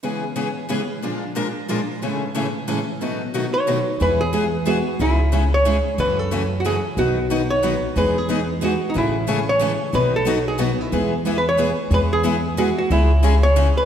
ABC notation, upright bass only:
X:1
M:3/4
L:1/8
Q:"Swing" 1/4=182
K:E
V:1 name="Upright bass" clef=bass
z6 | z6 | z6 | z6 |
E,,6 | C,,6 | F,,6 | B,,,6 |
E,,6 | A,,,6 | B,,,6 | E,,6 |
E,,6 | C,,6 |]